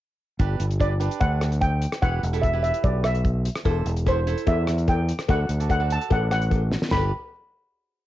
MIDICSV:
0, 0, Header, 1, 5, 480
1, 0, Start_track
1, 0, Key_signature, 1, "major"
1, 0, Tempo, 407609
1, 465, Time_signature, 4, 2, 24, 8
1, 9491, End_track
2, 0, Start_track
2, 0, Title_t, "Steel pan"
2, 0, Program_c, 0, 114
2, 950, Note_on_c, 0, 74, 75
2, 1393, Note_off_c, 0, 74, 0
2, 1420, Note_on_c, 0, 78, 86
2, 1868, Note_off_c, 0, 78, 0
2, 1900, Note_on_c, 0, 79, 85
2, 2380, Note_on_c, 0, 78, 91
2, 2396, Note_off_c, 0, 79, 0
2, 2828, Note_off_c, 0, 78, 0
2, 2844, Note_on_c, 0, 76, 80
2, 3079, Note_off_c, 0, 76, 0
2, 3093, Note_on_c, 0, 76, 75
2, 3342, Note_on_c, 0, 74, 69
2, 3346, Note_off_c, 0, 76, 0
2, 3588, Note_on_c, 0, 76, 70
2, 3591, Note_off_c, 0, 74, 0
2, 4034, Note_off_c, 0, 76, 0
2, 4810, Note_on_c, 0, 72, 74
2, 5277, Note_on_c, 0, 76, 77
2, 5293, Note_off_c, 0, 72, 0
2, 5720, Note_off_c, 0, 76, 0
2, 5760, Note_on_c, 0, 79, 80
2, 6244, Note_on_c, 0, 78, 90
2, 6249, Note_off_c, 0, 79, 0
2, 6705, Note_off_c, 0, 78, 0
2, 6719, Note_on_c, 0, 78, 93
2, 6938, Note_off_c, 0, 78, 0
2, 6975, Note_on_c, 0, 81, 90
2, 7187, Note_off_c, 0, 81, 0
2, 7210, Note_on_c, 0, 78, 87
2, 7426, Note_off_c, 0, 78, 0
2, 7441, Note_on_c, 0, 78, 76
2, 7882, Note_off_c, 0, 78, 0
2, 8143, Note_on_c, 0, 83, 70
2, 8369, Note_off_c, 0, 83, 0
2, 9491, End_track
3, 0, Start_track
3, 0, Title_t, "Cavaquinho"
3, 0, Program_c, 1, 24
3, 461, Note_on_c, 1, 62, 65
3, 465, Note_on_c, 1, 67, 59
3, 470, Note_on_c, 1, 71, 62
3, 752, Note_off_c, 1, 62, 0
3, 755, Note_off_c, 1, 67, 0
3, 755, Note_off_c, 1, 71, 0
3, 936, Note_on_c, 1, 62, 52
3, 947, Note_on_c, 1, 67, 45
3, 955, Note_on_c, 1, 71, 56
3, 1089, Note_off_c, 1, 62, 0
3, 1091, Note_off_c, 1, 67, 0
3, 1091, Note_off_c, 1, 71, 0
3, 1176, Note_on_c, 1, 71, 67
3, 1179, Note_on_c, 1, 67, 50
3, 1183, Note_on_c, 1, 62, 58
3, 1758, Note_off_c, 1, 62, 0
3, 1759, Note_off_c, 1, 67, 0
3, 1760, Note_off_c, 1, 71, 0
3, 2381, Note_on_c, 1, 64, 60
3, 2386, Note_on_c, 1, 67, 54
3, 2390, Note_on_c, 1, 71, 59
3, 2599, Note_off_c, 1, 64, 0
3, 2602, Note_off_c, 1, 67, 0
3, 2602, Note_off_c, 1, 71, 0
3, 2743, Note_on_c, 1, 64, 61
3, 2747, Note_on_c, 1, 69, 64
3, 2755, Note_on_c, 1, 67, 51
3, 2886, Note_off_c, 1, 64, 0
3, 2889, Note_off_c, 1, 69, 0
3, 2890, Note_off_c, 1, 67, 0
3, 2982, Note_on_c, 1, 64, 63
3, 2986, Note_on_c, 1, 67, 52
3, 2996, Note_on_c, 1, 71, 54
3, 3559, Note_off_c, 1, 64, 0
3, 3562, Note_off_c, 1, 67, 0
3, 3562, Note_off_c, 1, 71, 0
3, 4296, Note_on_c, 1, 64, 69
3, 4301, Note_on_c, 1, 69, 65
3, 4311, Note_on_c, 1, 72, 67
3, 4591, Note_off_c, 1, 64, 0
3, 4594, Note_off_c, 1, 69, 0
3, 4596, Note_off_c, 1, 72, 0
3, 4786, Note_on_c, 1, 64, 68
3, 4795, Note_on_c, 1, 69, 53
3, 4796, Note_on_c, 1, 72, 68
3, 4935, Note_off_c, 1, 64, 0
3, 4936, Note_off_c, 1, 69, 0
3, 4939, Note_off_c, 1, 72, 0
3, 5028, Note_on_c, 1, 64, 69
3, 5036, Note_on_c, 1, 69, 48
3, 5036, Note_on_c, 1, 72, 74
3, 5608, Note_off_c, 1, 64, 0
3, 5610, Note_off_c, 1, 69, 0
3, 5612, Note_off_c, 1, 72, 0
3, 6231, Note_on_c, 1, 66, 58
3, 6234, Note_on_c, 1, 69, 51
3, 6241, Note_on_c, 1, 74, 62
3, 6447, Note_off_c, 1, 66, 0
3, 6450, Note_off_c, 1, 69, 0
3, 6450, Note_off_c, 1, 74, 0
3, 6594, Note_on_c, 1, 74, 62
3, 6599, Note_on_c, 1, 69, 50
3, 6604, Note_on_c, 1, 66, 53
3, 6735, Note_off_c, 1, 66, 0
3, 6736, Note_off_c, 1, 69, 0
3, 6736, Note_off_c, 1, 74, 0
3, 6829, Note_on_c, 1, 66, 62
3, 6836, Note_on_c, 1, 74, 66
3, 6839, Note_on_c, 1, 69, 49
3, 7405, Note_off_c, 1, 66, 0
3, 7407, Note_off_c, 1, 69, 0
3, 7408, Note_off_c, 1, 74, 0
3, 8144, Note_on_c, 1, 67, 57
3, 8153, Note_on_c, 1, 71, 57
3, 8156, Note_on_c, 1, 74, 65
3, 8370, Note_off_c, 1, 74, 0
3, 8372, Note_off_c, 1, 67, 0
3, 8373, Note_off_c, 1, 71, 0
3, 9491, End_track
4, 0, Start_track
4, 0, Title_t, "Fingered electric bass"
4, 0, Program_c, 2, 33
4, 464, Note_on_c, 2, 31, 82
4, 652, Note_off_c, 2, 31, 0
4, 705, Note_on_c, 2, 31, 67
4, 1268, Note_off_c, 2, 31, 0
4, 1427, Note_on_c, 2, 38, 82
4, 2178, Note_off_c, 2, 38, 0
4, 2383, Note_on_c, 2, 28, 79
4, 2572, Note_off_c, 2, 28, 0
4, 2626, Note_on_c, 2, 28, 70
4, 3190, Note_off_c, 2, 28, 0
4, 3342, Note_on_c, 2, 35, 83
4, 4097, Note_off_c, 2, 35, 0
4, 4299, Note_on_c, 2, 28, 92
4, 4490, Note_off_c, 2, 28, 0
4, 4539, Note_on_c, 2, 28, 75
4, 5107, Note_off_c, 2, 28, 0
4, 5262, Note_on_c, 2, 40, 87
4, 6018, Note_off_c, 2, 40, 0
4, 6228, Note_on_c, 2, 38, 82
4, 6417, Note_off_c, 2, 38, 0
4, 6465, Note_on_c, 2, 38, 70
4, 7031, Note_off_c, 2, 38, 0
4, 7194, Note_on_c, 2, 33, 86
4, 7945, Note_off_c, 2, 33, 0
4, 8143, Note_on_c, 2, 31, 82
4, 8369, Note_off_c, 2, 31, 0
4, 9491, End_track
5, 0, Start_track
5, 0, Title_t, "Drums"
5, 465, Note_on_c, 9, 42, 45
5, 467, Note_on_c, 9, 36, 79
5, 583, Note_off_c, 9, 42, 0
5, 585, Note_off_c, 9, 36, 0
5, 703, Note_on_c, 9, 42, 74
5, 821, Note_off_c, 9, 42, 0
5, 831, Note_on_c, 9, 42, 52
5, 947, Note_on_c, 9, 36, 74
5, 949, Note_off_c, 9, 42, 0
5, 950, Note_on_c, 9, 42, 54
5, 1065, Note_off_c, 9, 36, 0
5, 1067, Note_off_c, 9, 42, 0
5, 1184, Note_on_c, 9, 42, 71
5, 1302, Note_off_c, 9, 42, 0
5, 1310, Note_on_c, 9, 42, 54
5, 1420, Note_off_c, 9, 42, 0
5, 1420, Note_on_c, 9, 42, 54
5, 1425, Note_on_c, 9, 36, 87
5, 1538, Note_off_c, 9, 42, 0
5, 1543, Note_off_c, 9, 36, 0
5, 1665, Note_on_c, 9, 37, 71
5, 1665, Note_on_c, 9, 42, 74
5, 1783, Note_off_c, 9, 37, 0
5, 1783, Note_off_c, 9, 42, 0
5, 1790, Note_on_c, 9, 42, 52
5, 1901, Note_off_c, 9, 42, 0
5, 1901, Note_on_c, 9, 42, 60
5, 1905, Note_on_c, 9, 36, 75
5, 2018, Note_off_c, 9, 42, 0
5, 2023, Note_off_c, 9, 36, 0
5, 2140, Note_on_c, 9, 42, 70
5, 2258, Note_off_c, 9, 42, 0
5, 2265, Note_on_c, 9, 37, 71
5, 2265, Note_on_c, 9, 42, 57
5, 2383, Note_off_c, 9, 37, 0
5, 2383, Note_off_c, 9, 42, 0
5, 2384, Note_on_c, 9, 42, 45
5, 2385, Note_on_c, 9, 36, 84
5, 2501, Note_off_c, 9, 42, 0
5, 2503, Note_off_c, 9, 36, 0
5, 2629, Note_on_c, 9, 42, 68
5, 2747, Note_off_c, 9, 42, 0
5, 2750, Note_on_c, 9, 42, 48
5, 2866, Note_on_c, 9, 36, 72
5, 2868, Note_off_c, 9, 42, 0
5, 2868, Note_on_c, 9, 42, 57
5, 2984, Note_off_c, 9, 36, 0
5, 2986, Note_off_c, 9, 42, 0
5, 3107, Note_on_c, 9, 42, 66
5, 3225, Note_off_c, 9, 42, 0
5, 3226, Note_on_c, 9, 42, 53
5, 3341, Note_off_c, 9, 42, 0
5, 3341, Note_on_c, 9, 42, 47
5, 3343, Note_on_c, 9, 36, 83
5, 3459, Note_off_c, 9, 42, 0
5, 3461, Note_off_c, 9, 36, 0
5, 3579, Note_on_c, 9, 37, 68
5, 3579, Note_on_c, 9, 42, 66
5, 3697, Note_off_c, 9, 37, 0
5, 3697, Note_off_c, 9, 42, 0
5, 3707, Note_on_c, 9, 42, 47
5, 3824, Note_off_c, 9, 42, 0
5, 3825, Note_on_c, 9, 36, 76
5, 3827, Note_on_c, 9, 42, 51
5, 3942, Note_off_c, 9, 36, 0
5, 3944, Note_off_c, 9, 42, 0
5, 4067, Note_on_c, 9, 42, 75
5, 4184, Note_off_c, 9, 42, 0
5, 4187, Note_on_c, 9, 37, 71
5, 4187, Note_on_c, 9, 42, 49
5, 4304, Note_off_c, 9, 37, 0
5, 4304, Note_off_c, 9, 42, 0
5, 4304, Note_on_c, 9, 36, 81
5, 4304, Note_on_c, 9, 42, 47
5, 4307, Note_on_c, 9, 56, 78
5, 4421, Note_off_c, 9, 42, 0
5, 4422, Note_off_c, 9, 36, 0
5, 4425, Note_off_c, 9, 56, 0
5, 4543, Note_on_c, 9, 42, 71
5, 4661, Note_off_c, 9, 42, 0
5, 4668, Note_on_c, 9, 42, 53
5, 4784, Note_on_c, 9, 56, 62
5, 4786, Note_off_c, 9, 42, 0
5, 4787, Note_on_c, 9, 36, 74
5, 4791, Note_on_c, 9, 42, 55
5, 4902, Note_off_c, 9, 56, 0
5, 4905, Note_off_c, 9, 36, 0
5, 4908, Note_off_c, 9, 42, 0
5, 5027, Note_on_c, 9, 42, 67
5, 5145, Note_off_c, 9, 42, 0
5, 5151, Note_on_c, 9, 42, 54
5, 5260, Note_on_c, 9, 56, 75
5, 5261, Note_off_c, 9, 42, 0
5, 5261, Note_on_c, 9, 42, 58
5, 5265, Note_on_c, 9, 36, 92
5, 5377, Note_off_c, 9, 56, 0
5, 5379, Note_off_c, 9, 42, 0
5, 5383, Note_off_c, 9, 36, 0
5, 5502, Note_on_c, 9, 37, 73
5, 5502, Note_on_c, 9, 42, 73
5, 5620, Note_off_c, 9, 37, 0
5, 5620, Note_off_c, 9, 42, 0
5, 5629, Note_on_c, 9, 42, 50
5, 5742, Note_on_c, 9, 56, 64
5, 5744, Note_off_c, 9, 42, 0
5, 5744, Note_on_c, 9, 42, 56
5, 5748, Note_on_c, 9, 36, 80
5, 5860, Note_off_c, 9, 56, 0
5, 5862, Note_off_c, 9, 42, 0
5, 5866, Note_off_c, 9, 36, 0
5, 5990, Note_on_c, 9, 42, 81
5, 6108, Note_off_c, 9, 42, 0
5, 6110, Note_on_c, 9, 37, 68
5, 6110, Note_on_c, 9, 42, 57
5, 6223, Note_on_c, 9, 56, 85
5, 6227, Note_off_c, 9, 37, 0
5, 6227, Note_off_c, 9, 42, 0
5, 6229, Note_on_c, 9, 42, 50
5, 6230, Note_on_c, 9, 36, 90
5, 6341, Note_off_c, 9, 56, 0
5, 6347, Note_off_c, 9, 42, 0
5, 6348, Note_off_c, 9, 36, 0
5, 6467, Note_on_c, 9, 42, 81
5, 6585, Note_off_c, 9, 42, 0
5, 6599, Note_on_c, 9, 42, 53
5, 6706, Note_on_c, 9, 56, 63
5, 6711, Note_on_c, 9, 36, 74
5, 6713, Note_off_c, 9, 42, 0
5, 6713, Note_on_c, 9, 42, 55
5, 6824, Note_off_c, 9, 56, 0
5, 6829, Note_off_c, 9, 36, 0
5, 6831, Note_off_c, 9, 42, 0
5, 6952, Note_on_c, 9, 42, 72
5, 7070, Note_off_c, 9, 42, 0
5, 7081, Note_on_c, 9, 42, 51
5, 7189, Note_on_c, 9, 56, 78
5, 7193, Note_off_c, 9, 42, 0
5, 7193, Note_on_c, 9, 42, 53
5, 7194, Note_on_c, 9, 36, 92
5, 7306, Note_off_c, 9, 56, 0
5, 7311, Note_off_c, 9, 42, 0
5, 7312, Note_off_c, 9, 36, 0
5, 7434, Note_on_c, 9, 37, 70
5, 7434, Note_on_c, 9, 42, 70
5, 7552, Note_off_c, 9, 37, 0
5, 7552, Note_off_c, 9, 42, 0
5, 7557, Note_on_c, 9, 42, 49
5, 7670, Note_on_c, 9, 56, 63
5, 7672, Note_on_c, 9, 36, 78
5, 7673, Note_off_c, 9, 42, 0
5, 7673, Note_on_c, 9, 42, 53
5, 7787, Note_off_c, 9, 56, 0
5, 7790, Note_off_c, 9, 36, 0
5, 7791, Note_off_c, 9, 42, 0
5, 7910, Note_on_c, 9, 38, 54
5, 8028, Note_off_c, 9, 38, 0
5, 8033, Note_on_c, 9, 38, 66
5, 8142, Note_off_c, 9, 38, 0
5, 8142, Note_on_c, 9, 38, 71
5, 8142, Note_on_c, 9, 43, 70
5, 8152, Note_on_c, 9, 56, 75
5, 8260, Note_off_c, 9, 38, 0
5, 8260, Note_off_c, 9, 43, 0
5, 8270, Note_off_c, 9, 56, 0
5, 9491, End_track
0, 0, End_of_file